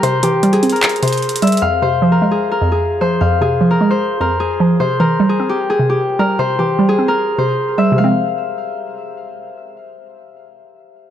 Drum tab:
HH |x-----------x-----------x-----x-----x---x---x---x---x---x---x--x--x--x--x---x---x---x--x--x--x--|------------------------------------------------------------------------------------------------|------------------------------------------------------------------------------------------------|------------------------------------------------------------------------------------------------|
CP |------------------------------------------------x-----------------------------------------------|------------------------------------------------------------------------------------------------|------------------------------------------------------------------------------------------------|------------------------------------------------------------------------------------------------|

HH |------------------------------------------------------------------------------------------------|------------------------------------------------------------------------------------------------|------------------------------------------------------------------------------------------------|
CP |------------------------------------------------------------------------------------------------|------------------------------------------------------------------------------------------------|------------------------------------------------------------------------------------------------|